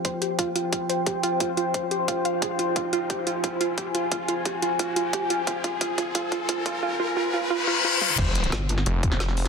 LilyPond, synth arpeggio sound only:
\new Staff \with { instrumentName = "Synth arpeggio sound" } { \time 4/4 \key f \minor \tempo 4 = 177 c''8 g'8 f'8 f'8 f'8 c''8 g'8 f'8 | f'8 f'8 c''8 g'8 f'8 f''8 aes'8 f'8 | f'8 f'8 g'8 f'8 f'8 f'8 g'8 f'8 | f'8 f'8 g'8 f'8 f'8 f'8 g'8 f'8 |
f'8 f'8 f'8 f'8 f'8 f'8 f'8 f'8 | f'8 f'8 f'8 f'8 f'8 f'8 f'8 f'8 | r1 | }